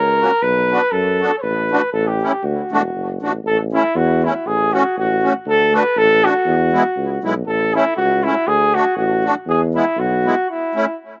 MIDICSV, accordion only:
0, 0, Header, 1, 2, 480
1, 0, Start_track
1, 0, Key_signature, 2, "major"
1, 0, Tempo, 502092
1, 415, Time_signature, 2, 2, 24, 8
1, 3297, Key_signature, 3, "major"
1, 10707, End_track
2, 0, Start_track
2, 0, Title_t, "Accordion"
2, 0, Program_c, 0, 21
2, 197, Note_on_c, 0, 58, 57
2, 201, Note_on_c, 0, 66, 56
2, 203, Note_on_c, 0, 61, 48
2, 295, Note_off_c, 0, 58, 0
2, 297, Note_off_c, 0, 66, 0
2, 298, Note_off_c, 0, 61, 0
2, 681, Note_on_c, 0, 59, 52
2, 686, Note_on_c, 0, 62, 56
2, 686, Note_on_c, 0, 66, 62
2, 776, Note_off_c, 0, 59, 0
2, 779, Note_off_c, 0, 62, 0
2, 779, Note_off_c, 0, 66, 0
2, 1153, Note_on_c, 0, 59, 57
2, 1161, Note_on_c, 0, 62, 47
2, 1163, Note_on_c, 0, 66, 57
2, 1252, Note_off_c, 0, 59, 0
2, 1256, Note_off_c, 0, 62, 0
2, 1257, Note_off_c, 0, 66, 0
2, 1633, Note_on_c, 0, 57, 54
2, 1638, Note_on_c, 0, 62, 58
2, 1642, Note_on_c, 0, 66, 73
2, 1732, Note_off_c, 0, 57, 0
2, 1734, Note_off_c, 0, 62, 0
2, 1736, Note_off_c, 0, 66, 0
2, 2122, Note_on_c, 0, 57, 48
2, 2126, Note_on_c, 0, 61, 48
2, 2133, Note_on_c, 0, 64, 56
2, 2216, Note_off_c, 0, 57, 0
2, 2218, Note_off_c, 0, 61, 0
2, 2221, Note_off_c, 0, 64, 0
2, 2595, Note_on_c, 0, 57, 63
2, 2602, Note_on_c, 0, 62, 50
2, 2605, Note_on_c, 0, 66, 74
2, 2693, Note_off_c, 0, 57, 0
2, 2697, Note_off_c, 0, 62, 0
2, 2698, Note_off_c, 0, 66, 0
2, 3081, Note_on_c, 0, 57, 47
2, 3081, Note_on_c, 0, 62, 50
2, 3087, Note_on_c, 0, 66, 53
2, 3178, Note_off_c, 0, 57, 0
2, 3178, Note_off_c, 0, 62, 0
2, 3181, Note_off_c, 0, 66, 0
2, 3563, Note_on_c, 0, 57, 62
2, 3564, Note_on_c, 0, 61, 50
2, 3573, Note_on_c, 0, 64, 63
2, 3661, Note_off_c, 0, 57, 0
2, 3661, Note_off_c, 0, 61, 0
2, 3666, Note_off_c, 0, 64, 0
2, 4051, Note_on_c, 0, 57, 47
2, 4054, Note_on_c, 0, 61, 46
2, 4057, Note_on_c, 0, 64, 57
2, 4145, Note_off_c, 0, 57, 0
2, 4147, Note_off_c, 0, 61, 0
2, 4148, Note_off_c, 0, 64, 0
2, 4523, Note_on_c, 0, 57, 58
2, 4524, Note_on_c, 0, 61, 60
2, 4526, Note_on_c, 0, 66, 70
2, 4621, Note_off_c, 0, 57, 0
2, 4621, Note_off_c, 0, 61, 0
2, 4622, Note_off_c, 0, 66, 0
2, 4997, Note_on_c, 0, 61, 50
2, 5000, Note_on_c, 0, 57, 55
2, 5006, Note_on_c, 0, 66, 56
2, 5097, Note_off_c, 0, 61, 0
2, 5098, Note_off_c, 0, 57, 0
2, 5101, Note_off_c, 0, 66, 0
2, 5470, Note_on_c, 0, 57, 61
2, 5475, Note_on_c, 0, 62, 54
2, 5479, Note_on_c, 0, 66, 71
2, 5571, Note_off_c, 0, 57, 0
2, 5574, Note_off_c, 0, 62, 0
2, 5576, Note_off_c, 0, 66, 0
2, 5962, Note_on_c, 0, 57, 57
2, 5964, Note_on_c, 0, 62, 52
2, 5966, Note_on_c, 0, 66, 65
2, 6057, Note_off_c, 0, 57, 0
2, 6058, Note_off_c, 0, 62, 0
2, 6059, Note_off_c, 0, 66, 0
2, 6426, Note_on_c, 0, 56, 56
2, 6434, Note_on_c, 0, 59, 59
2, 6437, Note_on_c, 0, 64, 70
2, 6529, Note_off_c, 0, 56, 0
2, 6533, Note_off_c, 0, 59, 0
2, 6535, Note_off_c, 0, 64, 0
2, 6919, Note_on_c, 0, 56, 61
2, 6925, Note_on_c, 0, 59, 46
2, 6929, Note_on_c, 0, 64, 63
2, 7017, Note_off_c, 0, 56, 0
2, 7020, Note_off_c, 0, 59, 0
2, 7022, Note_off_c, 0, 64, 0
2, 7400, Note_on_c, 0, 57, 63
2, 7406, Note_on_c, 0, 61, 57
2, 7412, Note_on_c, 0, 64, 59
2, 7499, Note_off_c, 0, 57, 0
2, 7502, Note_off_c, 0, 61, 0
2, 7505, Note_off_c, 0, 64, 0
2, 7880, Note_on_c, 0, 57, 54
2, 7886, Note_on_c, 0, 61, 53
2, 7886, Note_on_c, 0, 64, 53
2, 7978, Note_off_c, 0, 57, 0
2, 7981, Note_off_c, 0, 64, 0
2, 7982, Note_off_c, 0, 61, 0
2, 8359, Note_on_c, 0, 57, 66
2, 8363, Note_on_c, 0, 62, 51
2, 8363, Note_on_c, 0, 66, 66
2, 8457, Note_off_c, 0, 57, 0
2, 8459, Note_off_c, 0, 62, 0
2, 8459, Note_off_c, 0, 66, 0
2, 8837, Note_on_c, 0, 57, 51
2, 8838, Note_on_c, 0, 62, 54
2, 8844, Note_on_c, 0, 66, 62
2, 8935, Note_off_c, 0, 57, 0
2, 8936, Note_off_c, 0, 62, 0
2, 8939, Note_off_c, 0, 66, 0
2, 9312, Note_on_c, 0, 56, 65
2, 9318, Note_on_c, 0, 59, 54
2, 9323, Note_on_c, 0, 64, 63
2, 9412, Note_off_c, 0, 56, 0
2, 9415, Note_off_c, 0, 59, 0
2, 9418, Note_off_c, 0, 64, 0
2, 9795, Note_on_c, 0, 56, 53
2, 9797, Note_on_c, 0, 59, 52
2, 9803, Note_on_c, 0, 64, 62
2, 9892, Note_off_c, 0, 56, 0
2, 9894, Note_off_c, 0, 59, 0
2, 9897, Note_off_c, 0, 64, 0
2, 10278, Note_on_c, 0, 57, 67
2, 10282, Note_on_c, 0, 64, 59
2, 10283, Note_on_c, 0, 61, 56
2, 10375, Note_off_c, 0, 57, 0
2, 10377, Note_off_c, 0, 64, 0
2, 10378, Note_off_c, 0, 61, 0
2, 10707, End_track
0, 0, End_of_file